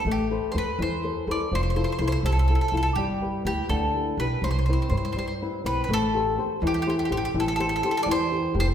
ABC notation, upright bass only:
X:1
M:6/8
L:1/8
Q:3/8=83
K:C
V:1 name="Upright bass" clef=bass
A,,,2 E,, E,,2 E,, | F,,,2 C,, C,,2 C,, | G,,,2 D,, D,,2 B,,, | C,,2 G,, G,,2 B,,, |
[K:Am] A,,,3 E,,2 A,,, | A,,,3 E,,2 F,,, |]